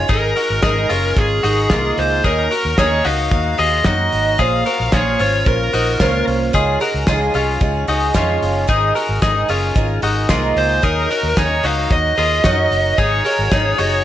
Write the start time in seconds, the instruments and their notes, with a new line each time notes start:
0.09 fingered electric bass G#1, twelve-string acoustic guitar G#2 D#3 G#3 D#4 G#4 A#4, clean electric guitar D#4 G#4, lead electric guitar A#4, kick, closed hi-hat
0.35 twelve-string acoustic guitar G#3 D#4 G#4 A#4, clean electric guitar F#4 A#4, open hi-hat
0.50 fingered electric bass G#1
0.62 fingered electric bass G#1, twelve-string acoustic guitar G#2 D#3 G#3 D#4 G#4 A#4, clean electric guitar D#4 G#4, lead electric guitar A#4, kick, snare, closed hi-hat
0.89 fingered electric bass F#1, twelve-string acoustic guitar G#3 D#4 G#4 A#4, clean electric guitar C#4 F4, open hi-hat
1.16 fingered electric bass G#1, twelve-string acoustic guitar G#3 D#4 G#4 A#4, lead electric guitar G#4, kick, closed hi-hat
1.43 fingered electric bass G#1, twelve-string acoustic guitar G#3 D#4 G#4 A#4, clean electric guitar D#4 F#4, open hi-hat
1.70 fingered electric bass C2, twelve-string acoustic guitar G#2 D#3 G#3 D#4 G#4 A#4, clean electric guitar A#3 F4, kick, snare, closed hi-hat
1.98 fingered electric bass C#2, lead electric guitar C5, open hi-hat
2.24 fingered electric bass D#2, twelve-string acoustic guitar D#3 A#3 C#4 F#4 A#4, clean electric guitar D#4 G#4, lead electric guitar A#4, kick, closed hi-hat
2.51 twelve-string acoustic guitar C#4 F#4 A#4, clean electric guitar F#4 A#4, open hi-hat
2.65 fingered electric bass D#2
2.77 fingered electric bass D#2, twelve-string acoustic guitar D#3 A#3 C#4 F#4 A#4, clean electric guitar D#4 G#4, lead electric guitar C#5, kick, snare, closed hi-hat
3.05 fingered electric bass C#2, twelve-string acoustic guitar C#4 F#4 A#4, clean electric guitar D#4 F#4, lead electric guitar F5, open hi-hat
3.31 fingered electric bass D#2, twelve-string acoustic guitar A#3 C#4 F#4 A#4, kick, closed hi-hat
3.57 fingered electric bass D#2, twelve-string acoustic guitar C#4 F#4 A#4, clean electric guitar F4 G#4, lead electric guitar D#5, open hi-hat
3.84 fingered electric bass F#2, twelve-string acoustic guitar D#3 A#3 C#4 F#4 A#4, clean electric guitar D#4 F#4, lead electric guitar D#5, kick, snare, closed hi-hat
4.13 fingered electric bass G#1, open hi-hat
4.38 fingered electric bass A#1, twelve-string acoustic guitar A#2 F3 A#3 C#4 F4 C5, clean electric guitar F4 G#4, lead electric guitar F5, kick, closed hi-hat
4.65 twelve-string acoustic guitar A#3 C#4 F4 C5, clean electric guitar F#4 A#4, open hi-hat
4.80 fingered electric bass A#1
4.92 fingered electric bass A#1, twelve-string acoustic guitar A#2 F3 A#3 C#4 F4 C5, clean electric guitar F4 G#4, lead electric guitar C#5, kick, snare, closed hi-hat
5.19 fingered electric bass G#1, twelve-string acoustic guitar A#3 C#4 F4 C5, clean electric guitar C#4 F4, open hi-hat
5.46 fingered electric bass A#1, twelve-string acoustic guitar A#3 C#4 F4 C5, lead electric guitar A#4, kick, closed hi-hat
5.73 fingered electric bass A#1, twelve-string acoustic guitar A#3 C#4 F4 C5, clean electric guitar D#4 F#4, open hi-hat
6.00 fingered electric bass C#2, twelve-string acoustic guitar A#2 F3 A#3 C#4 F4 C5, clean electric guitar C#4 F4, kick, snare, closed hi-hat
6.27 fingered electric bass C2, open hi-hat
6.53 fingered electric bass C#2, twelve-string acoustic guitar C#3 F3 G#3 C#4 D#4 G#4, clean electric guitar F4 G#4, kick, closed hi-hat
6.80 twelve-string acoustic guitar G#3 C#4 D#4 G#4, clean electric guitar F#4 A#4, open hi-hat
6.94 fingered electric bass C#2
7.07 fingered electric bass C#2, twelve-string acoustic guitar C#3 F3 G#3 C#4 D#4 G#4, clean electric guitar F4 G#4, kick, snare, closed hi-hat
7.34 fingered electric bass C2, twelve-string acoustic guitar G#3 C#4 D#4 G#4, clean electric guitar C#4 F4, open hi-hat
7.60 fingered electric bass C#2, twelve-string acoustic guitar G#3 C#4 D#4 G#4, kick, closed hi-hat
7.87 fingered electric bass C#2, twelve-string acoustic guitar G#3 C#4 D#4 G#4, clean electric guitar D#4 F#4, open hi-hat
8.14 fingered electric bass F2, twelve-string acoustic guitar C#3 F3 G#3 C#4 D#4 G#4, clean electric guitar C#4 F4, kick, snare, closed hi-hat
8.42 fingered electric bass F#1, open hi-hat
8.67 fingered electric bass G#1, twelve-string acoustic guitar G#2 D#3 G#3 D#4 G#4 A#4, clean electric guitar D#4 G#4, kick, closed hi-hat
8.95 twelve-string acoustic guitar G#3 D#4 G#4 A#4, clean electric guitar F#4 A#4, open hi-hat
9.09 fingered electric bass G#1
9.22 fingered electric bass G#1, twelve-string acoustic guitar G#2 D#3 G#3 D#4 G#4 A#4, clean electric guitar D#4 G#4, kick, snare, closed hi-hat
9.48 fingered electric bass F#1, twelve-string acoustic guitar G#3 D#4 G#4 A#4, clean electric guitar C#4 F4, open hi-hat
9.75 fingered electric bass G#1, twelve-string acoustic guitar G#3 D#4 G#4 A#4, kick, closed hi-hat
10.02 fingered electric bass G#1, twelve-string acoustic guitar G#3 D#4 G#4 A#4, clean electric guitar D#4 F#4, open hi-hat
10.29 fingered electric bass C2, twelve-string acoustic guitar G#2 D#3 G#3 D#4 G#4 A#4, clean electric guitar A#3 F4, kick, snare
10.56 fingered electric bass C#2, lead electric guitar C5, open hi-hat
10.82 fingered electric bass D#2, twelve-string acoustic guitar D#3 F#3 C#4 D#4 A#4, clean electric guitar D#4 G#4, lead electric guitar A#4, kick, closed hi-hat
11.09 twelve-string acoustic guitar C#4 D#4 A#4, clean electric guitar F#4 A#4, open hi-hat
11.23 fingered electric bass D#2
11.37 fingered electric bass D#2, twelve-string acoustic guitar D#3 F#3 C#4 D#4 A#4, clean electric guitar D#4 G#4, lead electric guitar C#5, kick, snare, closed hi-hat
11.63 fingered electric bass C#2, twelve-string acoustic guitar C#4 D#4 A#4, clean electric guitar D#4 F#4, lead electric guitar F5, open hi-hat
11.89 fingered electric bass D#2, twelve-string acoustic guitar F#3 C#4 D#4 A#4, lead electric guitar D#5, kick, closed hi-hat
12.17 fingered electric bass D#2, twelve-string acoustic guitar C#4 D#4 A#4, clean electric guitar F4 G#4, open hi-hat
12.44 fingered electric bass F#2, twelve-string acoustic guitar D#3 F#3 C#4 D#4 A#4, clean electric guitar D#4 F#4, kick, snare, closed hi-hat
12.71 fingered electric bass F#1, open hi-hat
12.98 fingered electric bass G#1, twelve-string acoustic guitar G#2 C#3 F#3 C#4 D#4 G#4, clean electric guitar D#4 G#4, lead electric guitar C#5, kick, closed hi-hat
13.24 twelve-string acoustic guitar F#3 C#4 D#4 G#4, clean electric guitar F#4 A#4, open hi-hat
13.39 fingered electric bass G#1
13.51 fingered electric bass G#1, twelve-string acoustic guitar G#2 C#3 F#3 C#4 D#4 G#4, clean electric guitar D#4 G#4, kick, snare, closed hi-hat
13.78 fingered electric bass F#1, twelve-string acoustic guitar F#3 C#4 D#4 G#4, clean electric guitar D#4 F#4, open hi-hat